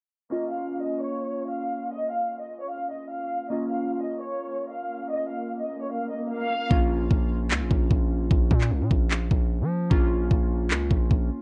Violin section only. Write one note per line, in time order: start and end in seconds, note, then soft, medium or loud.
0.31 0.48 D#5 medium
0.51 0.79 F5 medium
0.81 0.98 D#5 medium
1.01 1.48 C#5 medium
1.51 1.89 F5 medium
1.92 2.08 D#5 loud
2.11 2.39 F5 medium
2.41 2.58 D#5 medium
2.61 2.69 C#5 medium
2.70 2.88 F5 medium
2.91 3.08 D#5 medium
3.10 3.48 F5 medium
3.51 3.68 D#5 medium
3.71 3.99 F5 medium
4.01 4.18 D#5 medium
4.21 4.68 C#5 medium
4.71 5.08 F5 medium
5.11 5.28 D#5 loud
5.30 5.59 F5 medium
5.61 5.78 D#5 medium
5.81 5.89 C#5 medium
5.92 6.08 F5 medium
6.11 6.28 D#5 medium
6.31 6.68 F5 medium